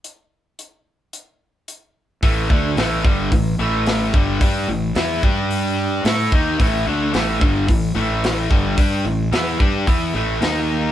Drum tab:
HH |x-x-x-x-|o-o-o-o-|o-o-o-o-|o-o-o-o-|
SD |--------|--o---o-|--o---o-|--o---o-|
BD |--------|oo-oo--o|o--o---o|o--oo--o|

HH |o-o-o-o-|
SD |--o---o-|
BD |o--oo---|